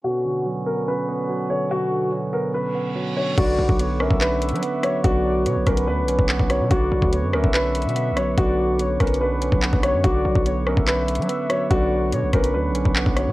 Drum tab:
CC |------------------------------------------------|------------------------------------------------|x-----------------------------------------------|------------------------------------------------|
HH |------------------------------------------------|------------------------------------------------|x-----------x-----------x-----x-x-x-x-----x-----|x-----------x-----x--x--------x-----------x-----|
CP |------------------------------------------------|------------------------------------------------|------------------------x-----------------------|------------------------------------x-----------|
SD |------------------------------------------------|------------------------------------------------|------------------r-----------------------r-----|------------------r-----------------------r-----|
BD |------------------------------------------------|------------------------------------------------|o--------o-----------o--------------------------|o-----------------o--------------o-----o--------|

CC |------------------------------------------------|------------------------------------------------|------------------------------------------------|------------------------------------------------|
HH |x-----------x-----------x-----x-x-x-x-----x-----|x-----------x-----x-x-x-------x-----------x-----|x-----------x-----------x-----x-x-x-x-----x-----|x-----------x-----x--x--------x-----------x-----|
CP |------------------------x-----------------------|------------------------------------x-----------|------------------------x-----------------------|------------------------------------x-----------|
SD |------------------r-----------------------r-----|------------------r-----------------------r-----|------------------r-----------------------r-----|------------------r-----------------------r-----|
BD |o--------o-----------o--------------------------|o-----------------o--------------o-----o--------|o--------o-----------o--------------------------|o-----------------o--------------o-----o--------|